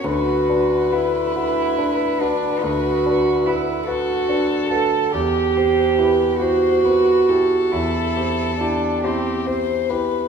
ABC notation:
X:1
M:12/8
L:1/8
Q:3/8=47
K:Bm
V:1 name="Violin"
B8- B A3 | G =c B c B A4 G c B |]
V:2 name="Grand piano"
D,, [DB] [FB] [FB] [DB] [FB] D,, [DB] [FB] [FB] [DB] [FB] | E,, [=CG] [EG] [EG] [CG] [EG] E,, [CG] [EG] [EG] [CG] [EG] |]
V:3 name="Cello"
F2 E3 D F2 E F2 A | G3 F3 E2 D =C z2 |]